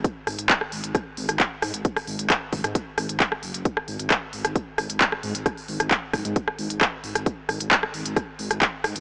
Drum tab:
HH |x-oxx-oxx-oxx-ox|xooxx-oxx-oxx-ox|x-oxx-oxx-oxx-ox|xooxx-oxx-oxx-ox|
CP |----x-------x---|----x-------x---|----x-------x---|----x-------x---|
SD |--r--r--r--r--r-|-r--r--r--r--r--|-r--r--r--r--r--|r--r--r--r--r--r|
BD |o---o---o---o---|o---o-o-o---o---|o---o---o---o---|o---o-o-o---o---|

HH |x-oxx-oxx-oxx-ox|
CP |----x-------x---|
SD |--r--r--r--r--r-|
BD |o---o---o---o---|